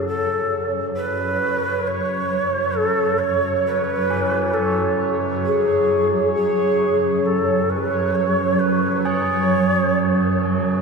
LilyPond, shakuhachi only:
\new Staff \with { instrumentName = "Shakuhachi" } { \time 4/4 \key fis \minor \tempo 4 = 67 a'8 r8 b'4 cis''4 a'8 cis''8 | b'4 a'8 r8 gis'4 gis'4 | a'8 b'8 cis''8 b'8 cis''4. r8 | }